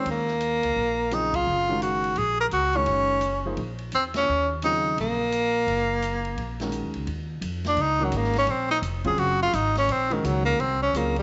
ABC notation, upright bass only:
X:1
M:4/4
L:1/8
Q:"Swing" 1/4=171
K:Ebdor
V:1 name="Upright bass" clef=bass
E,,3 D,, B,,,4 | G,,,4 B,,,2 D,,2 | G,,,4 B,,,2 _F,,2 | E,,4 B,,,4 |
G,,,4 B,,,2- (3B,,, E,, D,, | E,,2 F,,2 D,,2 A,,,2 | B,,,2 F,,,2 G,,,2 A,,,2 | B,,,2 D,,2 C,,2 D,,2 |]